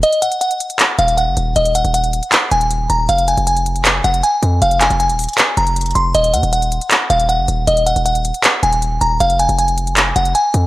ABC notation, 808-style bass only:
X:1
M:4/4
L:1/16
Q:1/4=157
K:Ebdor
V:1 name="808-style bass" clef=bass
z8 z2 E,,,3 G,,, E,,,2 | E,,,3 E,,,4 z3 E,,,4 E,,,2 | F,,,3 F,,,6- F,,, F,,,2 z2 F,,2 | F,,,3 F,,,2 E,,,2 z3 F,,,4 F,,,2 |
E,,,2 E,, E,,,4 z3 E,,,3 G,,, E,,,2 | E,,,3 E,,,4 z3 E,,,4 E,,,2 | F,,,3 F,,,6- F,,, F,,,2 z2 F,,2 |]